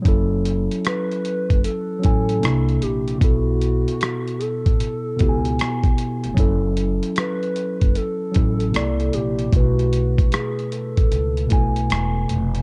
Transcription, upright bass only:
X:1
M:4/4
L:1/16
Q:"Swing 16ths" 1/4=76
K:Bmix
V:1 name="Upright bass" clef=bass
F,,,3 z4 F,,, z2 A,,,2 =C,,2 _B,,,2 | B,,,3 z4 A,,, z2 C,,2 z3 ^E,,, | F,,,3 z4 F,,, z2 A,,,2 =C,,2 _B,,,2 | B,,,3 z4 A,,, C,,2 B,,,2 E,,,2 ^E,,,2 |]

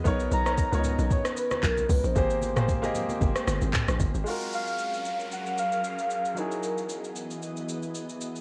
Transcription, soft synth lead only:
X:1
M:4/4
L:1/16
Q:"Swing 16ths" 1/4=114
K:F#
V:1 name="Soft synth lead"
z2 a4 a2 c2 B2 A2 B ^B- | ^B12 z4 | z2 e4 e2 f2 e6 | A6 z8 z2 |]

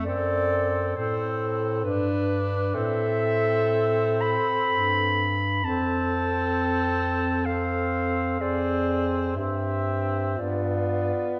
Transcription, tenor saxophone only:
X:1
M:3/4
L:1/8
Q:1/4=64
K:Am
V:1 name="Tenor saxophone"
C2 C2 D2 | C4- C z | C4 C2 | C2 C2 B,2 |]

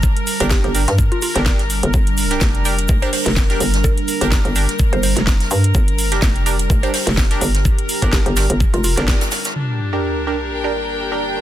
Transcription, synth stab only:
X:1
M:4/4
L:1/16
Q:"Swing 16ths" 1/4=126
K:Gm
V:1 name="Synth stab"
z3 [DGB]3 [DGB] z4 [DGB] [DGB] z3 | z3 [DGB]3 [DGB] z2 [DGB] z3 [DGB] z2 | z3 [DGB]3 [DGB] z8 z | z3 [DGB]3 [DGB] z2 [DGB] z3 [DGB] z2 |
z3 [DGB]3 [DGB] z4 [DGB] [DGB] z3 | z3 [DGB]3 [DGB] z2 [DGB] z3 [DGB] z2 |]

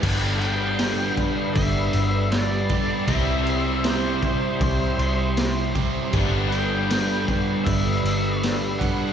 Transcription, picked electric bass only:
X:1
M:4/4
L:1/8
Q:1/4=79
K:G
V:1 name="Picked electric bass" clef=bass
G,,,4 G,,, G,,,3 | C,,4 C,, C,,3 | G,,,4 G,,, G,,,3 |]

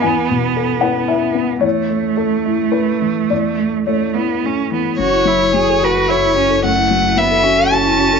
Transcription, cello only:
X:1
M:3/4
L:1/8
Q:1/4=110
K:F#m
V:1 name="Cello"
B,6 | A,6- | A,2 A, B, C B, | F E G F E C |
A,2 B, C3 |]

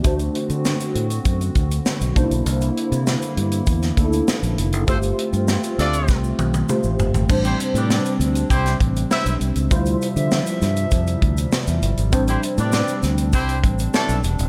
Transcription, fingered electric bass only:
X:1
M:4/4
L:1/16
Q:1/4=99
K:Am
V:1 name="Fingered electric bass" clef=bass
D,,2 z D,2 z A,,2 ^F,,2 D,,2 z B,,, C,, B,,, | C,,2 z C,2 z G,,2 E,,2 D,,2 z _B,,, F,,, ^F,,, | G,,,2 z G,,2 z D,,2 C,,2 B,,,2 z A,,, G,,, _A,,, | A,,,2 z A,,2 z D,,2 C,,2 A,,,2 z B,,, C,, _D,, |
D,,2 z D,2 z G,,2 F,,2 D,,2 z E,, G,,, _A,,, | A,,,2 z A,,2 z D,,2 C,,2 A,,,2 z B,,, E,,, _E,,, |]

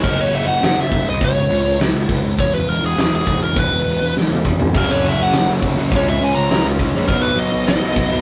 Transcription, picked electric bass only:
X:1
M:4/4
L:1/8
Q:1/4=204
K:Elyd
V:1 name="Picked electric bass" clef=bass
F,,,2 F,,, F,,, F,,, F,,, F,,, ^B,,, | C,, C,, C,, C,, C,, C,, C,, C,, | E,,,2 E,,, E,,, E,,, E,,, E,,, E,,, | E,,, E,,, E,,, E,,, E,,, E,,, E,,, E,,, |
F,,,2 F,,, F,,, F,,, F,,, F,,, F,,, | C,, C,, C,, C,, C,, C,, C,, A,,, | B,,,2 B,,, B,,, B,,, B,,, B,,, B,,, |]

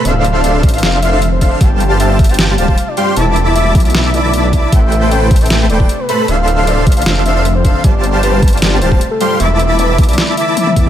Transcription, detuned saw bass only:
X:1
M:4/4
L:1/8
Q:1/4=154
K:Ddor
V:1 name="Detuned saw bass" clef=bass
D,,,3 A,,, F,,,3 z | G,,,4- G,,, D,,, z2 | E,,,3 B,,, B,,,3 z | A,,,4- A,,, E,,, z2 |
D,,,3 A,,, F,,,3 z | G,,,4- G,,, D,,, z2 | E,,,3 B,,, z3 E,, |]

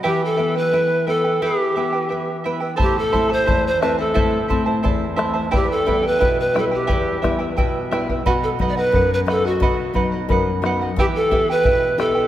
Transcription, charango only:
X:1
M:2/4
L:1/16
Q:1/4=88
K:Em
V:1 name="Charango"
[EGBeg]2 [EBeg] [EBg] [EBeg]2 [EBeg] [EBg] | [EGBeg]2 [EBeg] [EBg] [EBeg]2 [EBeg] [EBg] | [EAcea]2 [Ecea] [Eca] [Ecea]2 [Ecea] [Eca] | [EAcea]2 [Ecea] [Eca] [Ecea]2 [Ecea] [Eca] |
[EGBeg]2 [EBeg] [EBg] [EBeg]2 [EBeg] [EBg] | [EGBeg]2 [EBeg] [EBg] [EBeg]2 [EBeg] [EBg] | [B^df]2 [Bdf] [df] [Bdf]2 [Bdf] [df] | [B^df]2 [Bdf] [df] [Bdf]2 [Bdf] [df] |
[EGBeg]2 [EBeg] [EBg] [EBeg]2 [EBeg] [EBg] |]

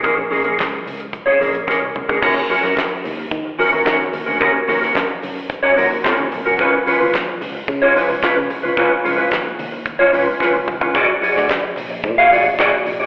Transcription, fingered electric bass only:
X:1
M:4/4
L:1/16
Q:1/4=110
K:Ebm
V:1 name="Fingered electric bass" clef=bass
B,,,2 B,,,2 D,,2 D,,3 z B,,,2 z =C,, D,, =D,, | E,, z2 G,, z2 E,,2 E,2 z E,, E, z E,, =D,, | E,,2 E,,2 G,,2 G,,3 z E,,2 z E,, C,, =C,, | D,, z2 E,, z2 D,,2 D,2 z D,, z D, z D,, |
D,,2 D,,2 E,,2 E,,3 z D,,2 z D,, A,,, =A,,, | B,,, z2 =D,, z2 B,,,2 B,,2 z B,,, B,, z B,,, =A,,, |]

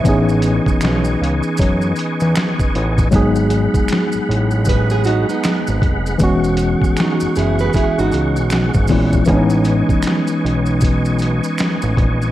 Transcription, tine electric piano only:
X:1
M:4/4
L:1/8
Q:"Swing 16ths" 1/4=78
K:Alyd
V:1 name="Tine electric piano"
[E,B,CDG]8 | [F,G,B,DG]8 | [E,G,B,CF]6- [E,G,B,CF] [E,G,B,CE] | [E,G,B,C=D^D]8 |]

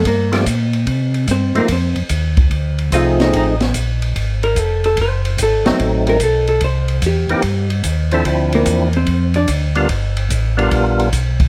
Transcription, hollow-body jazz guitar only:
X:1
M:4/4
L:1/8
Q:"Swing" 1/4=146
K:F
V:1 name="Hollow-body jazz guitar"
[B,B] z4 z [Cc] [B,B] | [Cc] z4 z [Ff] [_E_e] | [_E_e] z4 B A A | c2 A3 B A A |
c2 G3 z3 | z [B,B]2 [Cc]2 [Dd] z2 | z8 |]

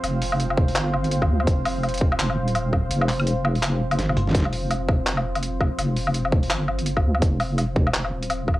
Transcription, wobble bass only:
X:1
M:4/4
L:1/8
Q:"Swing 16ths" 1/4=167
K:Cm
V:1 name="Wobble bass" clef=bass
F,,,4 G,,,3 D,, | F,,,4 F,,, E,,,3 | F,,,6 G,,,2 | F,,,6- F,,, z |
F,,,4 G,,,3 D,, | F,,,4 F,,, E,,,3 |]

